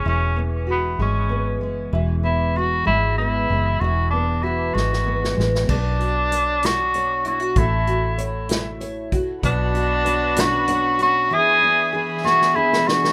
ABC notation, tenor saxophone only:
X:1
M:6/8
L:1/8
Q:3/8=64
K:Emix
V:1 name="Tenor saxophone"
C z B, C2 z | z E F E E2 | F D E F2 z | D3 F2 F |
E2 z4 | D3 F2 F | G2 z F E F |]